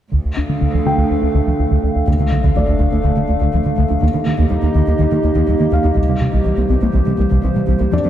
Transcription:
0.12 cello section D2, analog synth bass D2, synth arpeggio sound D3, ambient pad A3 D4 A4 F5
0.25 analog synth bass D2
0.37 analog synth bass D2, synth arpeggio sound D4
0.49 analog synth bass D3, synth arpeggio sound A3
0.61 analog synth bass D2, synth arpeggio sound D3
0.73 analog synth bass D2, synth arpeggio sound F3
0.85 analog synth bass D3, synth arpeggio sound A3, grand piano G5
0.98 analog synth bass D2, synth arpeggio sound D3
1.10 analog synth bass D2, synth arpeggio sound D4
1.22 analog synth bass D2, synth arpeggio sound D4
1.35 analog synth bass D2, synth arpeggio sound D3
1.47 analog synth bass D2, synth arpeggio sound F3
1.59 analog synth bass D2, synth arpeggio sound F3
1.71 analog synth bass D2, synth arpeggio sound D3
1.84 analog synth bass D2, synth arpeggio sound D4
1.95 analog synth bass D2, synth arpeggio sound D4
2.07 cello section D2, analog synth bass D2, synth arpeggio sound D3, ambient pad A3 D4 A4 F5, taiko, sub drop
2.20 cello section D2, analog synth bass D3, synth arpeggio sound A3
2.32 cello section D2, analog synth bass D3, synth arpeggio sound A3
2.43 analog synth bass D2, cello section D2, synth arpeggio sound D3
2.55 cello section D2, analog synth bass D2, synth arpeggio sound F3, grand piano D5
2.68 cello section D2, analog synth bass D2, synth arpeggio sound D4
2.80 cello section D2, analog synth bass D2, synth arpeggio sound D3
2.92 cello section D2, analog synth bass D2, synth arpeggio sound D4
3.04 cello section D2, analog synth bass D2, synth arpeggio sound D3
3.16 cello section D2, analog synth bass D3, synth arpeggio sound A3
3.28 cello section D2, analog synth bass D2, synth arpeggio sound D4
3.41 cello section D2, analog synth bass D2, synth arpeggio sound D3
3.53 cello section D2, analog synth bass D2, synth arpeggio sound F3
3.65 cello section D2, analog synth bass D3, synth arpeggio sound A3
3.77 cello section D2, analog synth bass D2, synth arpeggio sound D3
3.89 cello section D2, analog synth bass D2, synth arpeggio sound D4
4.01 cello section D#2, analog synth bass D#2, synth arpeggio sound D#3, ambient pad A#3 D#4 G4 D#5
4.13 cello section D#2, analog synth bass D#3, synth arpeggio sound A#3
4.26 cello section D#2, analog synth bass D#3, synth arpeggio sound A#3
4.38 cello section D#2, analog synth bass D#2, synth arpeggio sound D#3
4.50 cello section D#2, analog synth bass D#2, synth arpeggio sound G3
4.62 cello section D#2, analog synth bass D#2, synth arpeggio sound D#4
4.74 cello section D#2, analog synth bass D#2, synth arpeggio sound D#3
4.87 cello section D#2, analog synth bass D#2, synth arpeggio sound D#4
4.99 cello section D#2, analog synth bass D#2, synth arpeggio sound D#3
5.11 cello section D#2, analog synth bass D#3, synth arpeggio sound A#3
5.24 cello section D#2, analog synth bass D#2, synth arpeggio sound D#4
5.35 cello section D#2, analog synth bass D#2, synth arpeggio sound D#3
5.48 cello section D#2, analog synth bass D#2, synth arpeggio sound G3
5.60 cello section D#2, analog synth bass D#3, synth arpeggio sound A#3
5.72 cello section D#2, analog synth bass D#2, synth arpeggio sound D#3, grand piano F5
5.84 cello section D#2, analog synth bass D#2, synth arpeggio sound D#4
5.96 cello section C2, analog synth bass C2, synth arpeggio sound C3, ambient pad E3 C5, taiko
6.08 cello section C2, analog synth bass C3, synth arpeggio sound G3
6.20 cello section C2, analog synth bass C3, synth arpeggio sound G3
6.33 cello section C2, analog synth bass C2, synth arpeggio sound C3
6.45 cello section C2, analog synth bass C2, synth arpeggio sound E3
6.58 analog synth bass C2, cello section C2, synth arpeggio sound A#3
6.70 analog synth bass C2, cello section C2, synth arpeggio sound C3
6.82 cello section C2, analog synth bass C2, synth arpeggio sound A#3
6.94 cello section C2, analog synth bass C2, synth arpeggio sound C3
7.07 cello section C2, analog synth bass C3, synth arpeggio sound G3
7.19 cello section C2, analog synth bass C2, synth arpeggio sound A#3
7.31 cello section C2, analog synth bass C2, synth arpeggio sound C3
7.44 cello section C2, analog synth bass C2, synth arpeggio sound E3
7.56 cello section C2, analog synth bass C3, synth arpeggio sound G3
7.67 cello section C2, analog synth bass C2, synth arpeggio sound C3
7.80 cello section C2, analog synth bass C2, synth arpeggio sound A#3
7.92 cello section F2, analog synth bass F2, synth arpeggio sound F3, ambient pad A3 F4 A4, grand piano D4 D5
8.04 cello section F2, analog synth bass F3, synth arpeggio sound C4

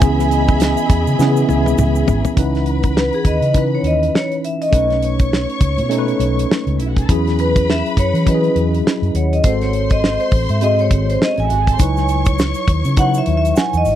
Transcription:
Already playing: tine electric piano C#4 F#4 G#4, string section G#4 E5 B5, vibraphone G#5
0.00 fingered electric bass C#2, tine electric piano E3 B3 C#4 G#4, kick, closed hi-hat, shaker
0.19 snare, shaker
0.31 vibraphone D#5, closed hi-hat, shaker
0.48 kick, shaker
0.60 snare, closed hi-hat, shaker
0.77 shaker
0.90 fingered electric bass E2, kick, closed hi-hat, shaker
1.07 fingered electric bass C#3, shaker
1.19 fingered electric bass C#3, tine electric piano E3 B3 C#4 G#4, snare, shaker
1.36 shaker
1.49 fingered electric bass C#2, vibraphone E5, high tom, shaker
1.66 high tom, shaker
1.78 fingered electric bass C#2, mid tom, shaker
1.95 shaker
2.07 fingered electric bass G#1, floor tom, shaker
2.25 floor tom, shaker
2.36 fingered electric bass C#2, tine electric piano E3 C#4 D#4 B4, string section B4 B5, vibraphone F#5, kick, closed hi-hat
2.55 snare, closed hi-hat
2.66 closed hi-hat
2.83 kick, closed hi-hat
2.97 vibraphone B4, snare
3.13 vibraphone G#4, closed hi-hat
3.25 fingered electric bass D#2, vibraphone D#5, kick, closed hi-hat
3.42 fingered electric bass C#3, closed hi-hat
3.54 tine electric piano E3 C#4 D#4 B4, kick, closed hi-hat
3.58 vibraphone B4
3.75 vibraphone C#5
3.83 fingered electric bass D#2, vibraphone D#5, closed hi-hat
4.03 closed hi-hat
4.15 vibraphone C#5, snare
4.32 closed hi-hat
4.44 vibraphone E5, closed hi-hat
4.62 vibraphone D#5, closed hi-hat
4.71 fingered electric bass B1, tine electric piano A3 C#4 D#4 B4, string section C#5 C#6, kick, closed hi-hat
4.90 snare, closed hi-hat
5.02 vibraphone C#5, closed hi-hat
5.19 kick, closed hi-hat
5.33 snare
5.50 closed hi-hat
5.61 fingered electric bass C#2, kick, closed hi-hat
5.78 fingered electric bass B2, closed hi-hat
5.89 tine electric piano A3 C#4 D#4 A4, closed hi-hat
5.98 tine electric piano B4
6.08 closed hi-hat
6.19 fingered electric bass B1, closed hi-hat
6.39 closed hi-hat
6.51 snare
6.67 fingered electric bass C#2, closed hi-hat
6.79 fingered electric bass B1, string section E4 E5, closed hi-hat
6.88 string section F#4 F#5
6.96 string section G#4 G#5, kick, closed hi-hat
7.03 string section A4 A5
7.09 fingered electric bass E2, tine electric piano F#3 C#4 E4 G#4, string section B4 B5, kick, closed hi-hat
7.27 snare, closed hi-hat
7.39 vibraphone B4, closed hi-hat
7.56 kick, closed hi-hat
7.70 vibraphone E5, snare
7.86 closed hi-hat
7.97 fingered electric bass F#2, vibraphone C#5, kick, closed hi-hat
8.13 fingered electric bass E3, closed hi-hat
8.25 tine electric piano F#3 C#4 E4 F#4, vibraphone B4 D#5, kick, closed hi-hat
8.34 tine electric piano G#4
8.44 closed hi-hat
8.56 fingered electric bass E2, closed hi-hat
8.74 closed hi-hat
8.87 snare
9.02 fingered electric bass F#2, closed hi-hat
9.14 fingered electric bass D#2, vibraphone C#5 F#5, closed hi-hat
9.33 vibraphone D#5, closed hi-hat
9.43 fingered electric bass G#1, tine electric piano G#3 C4 F#4 A4, string section C5 C6, vibraphone C5, kick, closed hi-hat
9.61 vibraphone C#5, snare, closed hi-hat
9.73 closed hi-hat
9.90 vibraphone D#5, kick, closed hi-hat
10.04 snare
10.20 vibraphone C5, closed hi-hat
10.31 fingered electric bass A1, kick, open hi-hat
10.49 fingered electric bass G#2, vibraphone E5, closed hi-hat
10.61 tine electric piano G#3 C4 F#4 G#4, vibraphone D#5, closed hi-hat
10.79 vibraphone C#5, closed hi-hat
10.91 fingered electric bass G#1, kick, closed hi-hat
11.10 vibraphone C5, closed hi-hat
11.22 vibraphone D#5, snare
11.30 string section C#4 C#5
11.38 fingered electric bass A1, string section D#4 D#5, vibraphone G#5, closed hi-hat
11.44 string section E4 E5
11.50 fingered electric bass G#1, string section F#4 F#5, closed hi-hat
11.59 string section G#4 G#5
11.67 string section A4 A5, kick, closed hi-hat
11.73 string section C5 C6
11.79 fingered electric bass C#2, tine electric piano F#3 D#4 E4 B4, string section C#5 C#6, kick, closed hi-hat, shaker
11.97 snare, shaker
12.08 closed hi-hat, shaker
12.25 kick, closed hi-hat, shaker
12.39 snare, shaker
12.54 closed hi-hat, shaker
12.67 fingered electric bass D#2, kick, closed hi-hat
12.85 fingered electric bass C#3, closed hi-hat, shaker
12.97 tine electric piano F#3 D#4 E4 B4, vibraphone F#5, kick, closed hi-hat, shaker
13.14 vibraphone E5, closed hi-hat, shaker
13.26 fingered electric bass D#2, closed hi-hat
13.37 vibraphone E5
13.45 closed hi-hat, shaker
13.55 vibraphone F#5 G#5, snare, shaker
13.73 fingered electric bass E2, closed hi-hat, shaker
13.77 vibraphone D#5
13.85 fingered electric bass G#1, open hi-hat, shaker

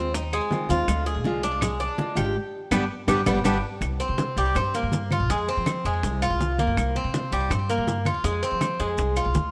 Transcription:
Already playing: upright bass D#2, nylon-string guitar G#3 C4 F4, cuban tres C4
0.14 cuban tres D#4, muted nylon-string guitar stroke, high bongo, high conga, maracas
0.33 cuban tres G#3, high bongo, high conga, claves, maracas
0.50 nylon-string guitar D#3 G#3 C4 F4, high bongo, low bongo, high conga, maracas
0.69 upright bass D#2, nylon-string guitar D#3 G#3 C4 F4, cuban tres F4, high bongo, high conga, maracas
0.88 upright bass D2, nylon-string guitar D3 G#3 D4 F4, high bongo, high conga, claves, maracas
1.06 cuban tres G#4, high conga, maracas
1.16 upright bass C2
1.24 nylon-string guitar D3 G#3 D4 F4, high bongo, high conga, maracas
1.43 nylon-string guitar G#3 D4 F4, cuban tres D4, high bongo, high conga, maracas
1.61 cuban tres G#3, muted nylon-string guitar stroke, high bongo, high conga, low conga, claves, maracas
1.80 cuban tres D4, high bongo, high conga, maracas
1.98 nylon-string guitar D3 G#3 D4 F4, high bongo, low bongo, high conga, maracas
2.15 upright bass G#1, nylon-string guitar G#3 D4 F4, cuban tres G4, high bongo, high conga, claves, maracas
2.71 upright bass G1, nylon-string guitar D3 G3 B3, cuban tres G3 B3 D4, high bongo, low conga, claves, maracas
3.08 upright bass G1, nylon-string guitar D3 G3 B3, cuban tres G3 B3 D4, high bongo, low conga, claves, maracas
3.26 upright bass G1, nylon-string guitar D3 G3 B3, cuban tres G3 B3 D4, high bongo, low conga, claves, maracas
3.44 upright bass G1, nylon-string guitar D3 G3 B3, cuban tres G3 B3 D4, high bongo, low conga, claves, maracas
3.81 upright bass C2, high bongo, high conga, claves, maracas
4.00 cuban tres C4, high conga, maracas
4.09 upright bass C3
4.18 high bongo, high conga, maracas
4.37 upright bass C2, cuban tres G3, high bongo, maracas
4.55 upright bass G2, cuban tres C4, high bongo, high conga, low conga, claves, maracas
4.74 cuban tres A#3, high bongo, high conga, maracas
4.83 upright bass G2
4.92 high bongo, low bongo, high conga, maracas
5.11 cuban tres F4, high bongo, high conga, claves, maracas
5.20 upright bass C2
5.29 upright bass F2, cuban tres G#3, high bongo, high conga, maracas
5.48 cuban tres C4, high conga
5.57 upright bass F3
5.66 high bongo, high conga, claves, maracas
5.85 upright bass F2, cuban tres G#3, high bongo, maracas
6.03 upright bass C2, high bongo, high conga, maracas
6.22 cuban tres F4, high bongo, high conga, claves, maracas
6.30 upright bass C2
6.40 high bongo, low bongo, high conga, maracas
6.58 cuban tres A#3, high bongo, high conga, maracas
6.67 upright bass G2
6.77 upright bass C2, high bongo, high conga, claves, maracas
6.95 cuban tres C4, high conga
7.04 upright bass C3
7.14 high bongo, high conga, maracas
7.32 upright bass C2, cuban tres G3, high bongo, maracas
7.50 upright bass G2, cuban tres C4, high bongo, high conga, low conga, claves, maracas
7.69 cuban tres A#3, high bongo, high conga, maracas
7.78 upright bass G2
7.87 high bongo, low bongo, high conga, maracas
8.05 cuban tres F4, high bongo, high conga, claves, maracas
8.15 upright bass D#2
8.24 upright bass F2, cuban tres G#3, high bongo, high conga, maracas
8.42 cuban tres C4, high conga, maracas
8.52 upright bass F3
8.61 high bongo, high conga, claves, maracas
8.80 upright bass F2, cuban tres G#3, high bongo, maracas
8.98 upright bass C2, high bongo, high conga, maracas
9.16 cuban tres F4, high bongo, high conga, claves, maracas
9.26 upright bass C2
9.34 upright bass D2, high bongo, low bongo, high conga, maracas

